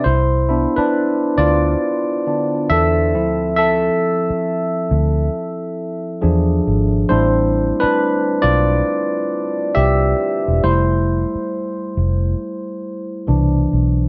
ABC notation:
X:1
M:4/4
L:1/16
Q:"Swing 16ths" 1/4=68
K:C
V:1 name="Tine electric piano"
[Ec]3 [DB]3 [Fd]6 [Ae]4 | [Ae]12- [Ae]2 z2 | [Ec]3 [DB]3 [Fd]6 [Ge]4 | [Ec]12- [Ec]2 z2 |]
V:2 name="Tine electric piano"
z2 [B,DE]8 [D,B,D]2 z2 [F,CE]2 | z12 [F,D^G]4 | [G,A,CD]6 z8 z2 | [G,A,]2 z8 z2 [B,,E,D]4 |]
V:3 name="Fingered electric bass" clef=bass
C,,3 z3 D,,2 z4 E,,2 D,,2- | D,,2 z4 D,,2 z4 E,,2 ^G,,,2 | A,,,3 z3 B,,,2 z4 C,,2 z E,,, | F,,,3 z3 F,,,2 z4 C,,2 B,,,2 |]